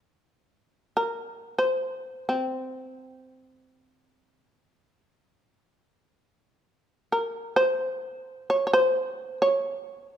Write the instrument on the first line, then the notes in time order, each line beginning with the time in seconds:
shamisen
0.97 A#4
1.58 C5
2.29 C4
7.12 A#4
7.56 C5
8.50 C#5
8.67 C#5
8.73 C5
9.42 C#5